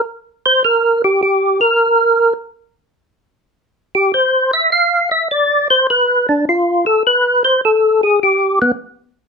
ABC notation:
X:1
M:4/4
L:1/8
Q:"Swing" 1/4=103
K:C
V:1 name="Tonewheel organ"
z c _B G G B3 | z4 z G c e | f e d c B D F A | B c A _A G B, z2 |]